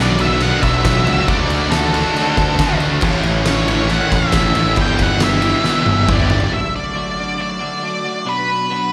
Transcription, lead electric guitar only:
0, 0, Header, 1, 2, 480
1, 0, Start_track
1, 0, Tempo, 437956
1, 1398, Time_signature, 4, 2, 24, 8
1, 9783, End_track
2, 0, Start_track
2, 0, Title_t, "Lead electric guitar"
2, 0, Program_c, 0, 29
2, 25, Note_on_c, 0, 74, 97
2, 217, Note_off_c, 0, 74, 0
2, 230, Note_on_c, 0, 76, 101
2, 460, Note_off_c, 0, 76, 0
2, 465, Note_on_c, 0, 78, 114
2, 675, Note_off_c, 0, 78, 0
2, 679, Note_on_c, 0, 76, 123
2, 1403, Note_off_c, 0, 76, 0
2, 1407, Note_on_c, 0, 74, 115
2, 1878, Note_on_c, 0, 69, 86
2, 1897, Note_off_c, 0, 74, 0
2, 3034, Note_off_c, 0, 69, 0
2, 3807, Note_on_c, 0, 73, 92
2, 4294, Note_off_c, 0, 73, 0
2, 4308, Note_on_c, 0, 78, 112
2, 4537, Note_off_c, 0, 78, 0
2, 4556, Note_on_c, 0, 76, 105
2, 5209, Note_off_c, 0, 76, 0
2, 5274, Note_on_c, 0, 79, 124
2, 5499, Note_off_c, 0, 79, 0
2, 5507, Note_on_c, 0, 78, 114
2, 5732, Note_off_c, 0, 78, 0
2, 5736, Note_on_c, 0, 76, 82
2, 6718, Note_on_c, 0, 74, 105
2, 6877, Note_off_c, 0, 76, 0
2, 7163, Note_off_c, 0, 74, 0
2, 7168, Note_on_c, 0, 76, 113
2, 7382, Note_off_c, 0, 76, 0
2, 7406, Note_on_c, 0, 74, 89
2, 8112, Note_off_c, 0, 74, 0
2, 8125, Note_on_c, 0, 74, 92
2, 9085, Note_on_c, 0, 71, 79
2, 9110, Note_off_c, 0, 74, 0
2, 9783, Note_off_c, 0, 71, 0
2, 9783, End_track
0, 0, End_of_file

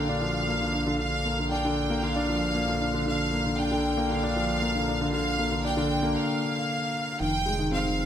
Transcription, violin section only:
0, 0, Header, 1, 2, 480
1, 0, Start_track
1, 0, Tempo, 517241
1, 924, Time_signature, 4, 2, 24, 8
1, 7476, End_track
2, 0, Start_track
2, 0, Title_t, "Violin section"
2, 0, Program_c, 0, 48
2, 0, Note_on_c, 0, 77, 97
2, 912, Note_off_c, 0, 77, 0
2, 923, Note_on_c, 0, 77, 100
2, 1370, Note_off_c, 0, 77, 0
2, 1405, Note_on_c, 0, 79, 90
2, 1884, Note_off_c, 0, 79, 0
2, 1887, Note_on_c, 0, 77, 100
2, 2846, Note_off_c, 0, 77, 0
2, 2857, Note_on_c, 0, 77, 92
2, 3298, Note_off_c, 0, 77, 0
2, 3328, Note_on_c, 0, 79, 90
2, 3805, Note_on_c, 0, 77, 102
2, 3806, Note_off_c, 0, 79, 0
2, 4741, Note_off_c, 0, 77, 0
2, 4752, Note_on_c, 0, 77, 98
2, 5204, Note_off_c, 0, 77, 0
2, 5245, Note_on_c, 0, 79, 90
2, 5715, Note_on_c, 0, 77, 89
2, 5725, Note_off_c, 0, 79, 0
2, 6680, Note_off_c, 0, 77, 0
2, 6691, Note_on_c, 0, 79, 122
2, 7134, Note_off_c, 0, 79, 0
2, 7167, Note_on_c, 0, 77, 105
2, 7476, Note_off_c, 0, 77, 0
2, 7476, End_track
0, 0, End_of_file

